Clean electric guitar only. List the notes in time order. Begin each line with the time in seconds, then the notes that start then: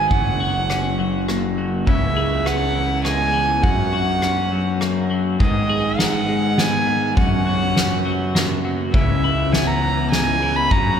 Already playing: G#3 B3 D#4 G#4
0.12 F#2
0.40 F#4
0.70 C#4
0.99 F#3
1.29 A#3
1.58 F#3
1.87 C#3
2.17 G#4
2.45 B3
2.75 E3
3.04 G#3
3.34 E3
3.63 F#2
3.93 F#4
4.23 C#4
4.52 F#3
4.81 A#3
5.10 F#3
5.40 G#2
5.69 G#4
5.99 D#4
6.29 G#3
6.58 B3
6.87 G#3
7.17 F#2
7.47 F#4
7.77 C#4
8.05 F#3
8.35 A#3
8.65 F#3
8.94 C#3
9.24 E4
9.53 B3
9.83 E3
10.12 G#3
10.42 E3
10.72 F#2